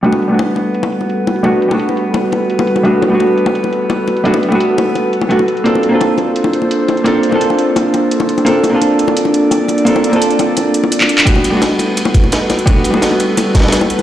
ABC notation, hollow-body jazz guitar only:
X:1
M:4/4
L:1/16
Q:1/4=171
K:G
V:1 name="Hollow-body jazz guitar"
[G,A,B,DF]3 [G,A,B,DF]12- [G,A,B,DF] | [G,A,B,DF]3 [G,A,B,DF]12- [G,A,B,DF] | [G,A,B,DF]3 [G,A,B,DF]12- [G,A,B,DF] | [G,A,B,DF]3 [G,A,B,DF]8- [G,A,B,DF] [G,A,B,DF] z3 |
[_B,CD=FA]3 [B,CDFA]12- [B,CDFA] | [_B,CD=FA]3 [B,CDFA]12- [B,CDFA] | [_B,CD=FA]3 [B,CDFA]12- [B,CDFA] | [_B,CD=FA]3 [B,CDFA]12- [B,CDFA] |
[G,A,B,DF]3 [G,A,B,DF]12- [G,A,B,DF] | [G,A,B,DF]3 [G,A,B,DF]12- [G,A,B,DF] |]